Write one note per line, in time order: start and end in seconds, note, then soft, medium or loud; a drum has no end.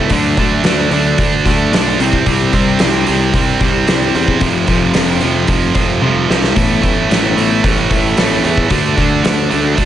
0.00 0.10 E3 medium
0.00 0.10 A3 medium
0.09 0.33 D2 medium
0.09 0.62 D3 medium
0.09 0.38 D3 medium
0.09 0.63 F#3 medium
0.09 0.38 A3 medium
0.09 0.38 D4 medium
0.09 0.37 F#4 medium
0.09 0.36 D5 medium
0.09 kick medium
0.09 open hi-hat medium
0.37 0.60 D2 medium
0.37 0.64 D3 medium
0.37 0.65 A3 medium
0.37 0.64 A3 medium
0.37 0.64 D4 medium
0.37 0.65 D4 medium
0.37 0.64 F#4 medium
0.37 0.65 D5 medium
0.37 kick medium
0.37 open hi-hat soft
0.63 0.86 D2 medium
0.63 1.18 D3 medium
0.63 0.91 D3 medium
0.63 1.18 F#3 medium
0.63 0.92 A3 medium
0.63 0.91 D4 medium
0.63 0.92 D4 medium
0.63 0.91 F#4 medium
0.63 0.90 D5 medium
0.63 snare loud
0.63 open hi-hat medium
0.91 1.14 D2 medium
0.91 1.18 D3 medium
0.91 1.45 A3 soft
0.91 1.18 A3 medium
0.91 1.45 D4 medium
0.91 1.18 D4 medium
0.91 1.43 F#4 medium
0.91 1.43 D5 medium
0.91 open hi-hat soft
1.18 1.41 D2 medium
1.18 1.45 D3 medium
1.18 1.46 A3 medium
1.18 1.46 D4 loud
1.18 kick medium
1.18 open hi-hat medium
1.44 1.68 D2 medium
1.44 1.72 D3 medium
1.44 1.71 A3 medium
1.44 1.73 A3 medium
1.44 1.71 D4 medium
1.44 1.73 D4 medium
1.44 1.72 F#4 medium
1.44 1.73 D5 medium
1.44 kick medium
1.44 open hi-hat soft
1.72 1.94 B1 medium
1.72 1.98 D3 medium
1.72 1.97 A3 medium
1.72 1.98 A3 medium
1.72 1.98 D4 medium
1.72 1.99 D4 medium
1.72 1.98 F#4 medium
1.72 1.98 D5 medium
1.72 snare loud
1.72 open hi-hat medium
1.98 2.22 C2 medium
1.98 2.26 C3 medium
1.98 2.24 C3 medium
1.98 2.25 G3 medium
1.98 2.27 G3 medium
1.98 2.26 C4 medium
1.98 2.27 C4 medium
1.98 2.26 E4 medium
1.98 2.26 G4 medium
1.98 2.27 C5 medium
1.98 open hi-hat soft
2.13 kick medium
2.25 2.49 C2 medium
2.25 2.77 C3 medium
2.25 2.52 C3 medium
2.25 2.78 G3 medium
2.25 2.53 G3 medium
2.25 2.54 C4 medium
2.25 2.53 E4 medium
2.25 2.52 G4 medium
2.25 2.51 C5 medium
2.25 kick medium
2.25 open hi-hat medium
2.52 2.76 C2 medium
2.52 2.79 C3 medium
2.52 2.80 G3 medium
2.52 2.79 C4 soft
2.52 2.81 C4 medium
2.52 2.79 E4 medium
2.52 2.79 G4 medium
2.52 2.80 C5 medium
2.52 kick medium
2.52 open hi-hat soft
2.78 3.04 C2 medium
2.78 3.33 C3 medium
2.78 3.06 C3 medium
2.78 3.33 G3 medium
2.78 3.06 G3 medium
2.78 3.07 C4 medium
2.78 3.08 C4 medium
2.78 3.06 E4 medium
2.78 3.05 G4 medium
2.78 3.05 C5 medium
2.78 snare loud
2.78 open hi-hat medium
3.05 3.31 C2 medium
3.05 3.33 C3 medium
3.05 3.34 G3 medium
3.05 3.60 C4 medium
3.05 3.34 C4 medium
3.05 3.60 E4 medium
3.05 3.59 G4 medium
3.05 3.58 C5 medium
3.05 open hi-hat soft
3.34 3.56 C2 medium
3.34 3.61 C3 medium
3.34 3.61 G3 medium
3.34 3.62 C4 loud
3.34 kick medium
3.34 open hi-hat medium
3.59 3.83 C2 medium
3.59 3.86 C3 medium
3.59 3.87 G3 medium
3.59 3.84 C4 medium
3.59 3.88 C4 medium
3.59 3.85 E4 medium
3.59 3.86 G4 medium
3.59 3.87 C5 medium
3.59 kick medium
3.59 open hi-hat soft
3.86 4.10 C2 medium
3.86 4.14 C3 medium
3.86 4.14 G3 medium
3.86 4.39 C4 medium
3.86 4.15 C4 medium
3.86 4.39 E4 medium
3.86 4.40 G4 medium
3.86 4.40 C5 medium
3.86 snare loud
3.86 open hi-hat medium
4.14 4.37 E2 medium
4.14 4.40 C3 medium
4.14 4.40 G3 medium
4.14 4.40 C4 medium
4.14 open hi-hat soft
4.28 kick medium
4.39 4.64 F1 medium
4.39 4.66 F2 medium
4.39 4.67 C3 medium
4.39 4.92 F3 medium
4.39 4.67 F3 medium
4.39 4.93 C4 medium
4.39 4.68 F4 medium
4.39 4.67 A4 medium
4.39 4.65 C5 medium
4.39 kick medium
4.39 open hi-hat medium
4.67 4.91 F1 medium
4.67 4.93 F2 medium
4.67 4.94 C3 medium
4.67 4.94 F3 medium
4.67 4.93 F4 medium
4.67 4.95 A4 medium
4.67 4.94 C5 medium
4.67 kick medium
4.67 open hi-hat soft
4.93 5.18 F1 medium
4.93 5.21 F2 medium
4.93 5.21 C3 medium
4.93 5.48 F3 medium
4.93 5.22 F3 medium
4.93 5.48 C4 medium
4.93 5.22 F4 medium
4.93 5.22 A4 medium
4.93 5.19 C5 medium
4.93 snare medium
4.93 open hi-hat medium
5.21 5.45 F1 medium
5.21 5.47 F2 medium
5.21 5.47 C3 medium
5.21 5.48 F3 medium
5.21 5.76 F4 medium
5.21 5.76 A4 medium
5.21 5.73 C5 medium
5.21 open hi-hat soft
5.47 5.71 F1 medium
5.47 5.74 F2 medium
5.47 5.74 C3 medium
5.47 5.74 F3 loud
5.47 kick medium
5.47 open hi-hat medium
5.75 5.98 F1 medium
5.75 6.00 F2 medium
5.75 6.01 C3 medium
5.75 6.01 F3 medium
5.75 6.01 F4 medium
5.75 6.03 A4 medium
5.75 6.03 C5 medium
5.75 kick medium
5.75 open hi-hat soft
6.01 6.25 F1 medium
6.01 6.27 F2 medium
6.01 6.28 C3 medium
6.01 6.28 F3 medium
6.01 6.54 C4 medium
6.01 6.55 F4 medium
6.01 6.57 A4 medium
6.01 6.55 C5 medium
6.01 high tom medium
6.28 6.52 C2 medium
6.28 6.54 F2 medium
6.28 6.54 C3 medium
6.28 6.55 F3 medium
6.28 snare medium
6.44 snare medium
6.55 6.79 A1 medium
6.55 6.81 A2 medium
6.55 6.81 E3 medium
6.55 7.08 A3 medium
6.55 6.82 A3 medium
6.55 7.08 B3 medium
6.55 6.84 E4 medium
6.55 6.83 A4 medium
6.55 6.81 C#5 medium
6.55 kick medium
6.55 open hi-hat medium
6.82 7.06 A1 medium
6.82 7.08 A2 medium
6.82 7.08 E3 medium
6.82 7.09 A3 medium
6.82 7.09 E4 soft
6.82 7.10 A4 medium
6.82 7.10 C#5 medium
6.82 kick medium
6.82 open hi-hat soft
7.08 7.33 A1 medium
7.08 7.34 A2 medium
7.08 7.34 E3 medium
7.08 7.63 A3 medium
7.08 7.35 A3 medium
7.08 7.63 B3 medium
7.08 7.37 E4 medium
7.08 7.36 A4 medium
7.08 7.34 C#5 medium
7.08 snare loud
7.08 open hi-hat medium
7.35 7.60 A1 medium
7.35 7.62 A2 medium
7.35 7.63 E3 medium
7.35 7.63 A3 medium
7.35 7.91 E4 soft
7.35 7.90 A4 medium
7.35 7.89 C#5 medium
7.35 open hi-hat soft
7.63 7.86 A1 medium
7.63 7.89 A2 medium
7.63 7.90 E3 medium
7.63 7.90 A3 medium
7.63 kick loud
7.63 open hi-hat medium
7.90 8.13 A1 medium
7.90 8.16 A2 medium
7.90 8.17 E3 medium
7.90 8.18 A3 medium
7.90 8.16 E4 soft
7.90 8.17 A4 medium
7.90 8.18 C#5 medium
7.90 kick medium
7.90 open hi-hat soft
8.17 8.40 A1 medium
8.17 8.42 A2 medium
8.17 8.43 E3 medium
8.17 8.43 A3 medium
8.17 8.69 B3 medium
8.17 8.69 E4 medium
8.17 8.69 A4 medium
8.17 8.70 C#5 medium
8.17 snare loud
8.17 open hi-hat medium
8.43 8.67 E2 medium
8.43 8.69 A2 medium
8.43 8.69 E3 medium
8.43 8.69 A3 medium
8.43 open hi-hat soft
8.58 kick medium
8.69 8.93 D2 medium
8.69 9.22 D3 medium
8.69 8.96 D3 medium
8.69 8.97 A3 medium
8.69 8.96 D4 medium
8.69 8.97 D4 medium
8.69 8.95 F#4 medium
8.69 kick medium
8.69 open hi-hat medium
8.96 9.20 D2 medium
8.96 9.21 D3 medium
8.96 9.23 A3 medium
8.96 9.22 A3 medium
8.96 9.23 D4 medium
8.96 9.24 F#4 medium
8.96 kick medium
8.96 open hi-hat soft
9.23 9.47 D2 medium
9.23 9.48 D3 medium
9.23 9.77 D3 medium
9.23 9.51 A3 medium
9.23 9.49 A3 medium
9.23 9.49 D4 medium
9.23 9.50 D4 medium
9.23 9.49 F#4 medium
9.23 snare loud
9.23 open hi-hat medium
9.49 9.74 D2 medium
9.49 9.74 D3 medium
9.49 9.74 A3 medium
9.49 9.85 A3 medium
9.49 9.76 D4 medium
9.49 9.85 D4 medium
9.49 9.85 F#4 medium
9.49 open hi-hat soft
9.75 9.85 D2 medium
9.75 9.85 D3 medium
9.75 9.85 A3 medium
9.75 9.85 D4 medium
9.75 kick medium
9.75 open hi-hat medium